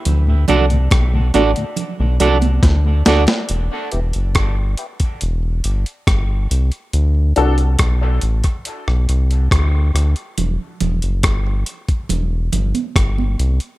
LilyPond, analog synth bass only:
\new Staff \with { instrumentName = "Analog synth bass" } { \clef bass \time 4/4 \key e \minor \tempo 4 = 70 d,8 c,8 b,,8 a,,16 r8 b,,16 c,8 d,8 d,16 r16 | e,,16 r16 e,,16 fis,,16 g,,8 r8 e,,8 g,,16 r16 g,,8 c,16 r16 | d,8 c,8 b,,8 a,,16 r8 b,,16 c,8 d,8 d,16 r16 | e,,16 r16 e,,16 fis,,16 g,,8 r8 e,,8 g,,16 r16 g,,8 c,16 r16 | }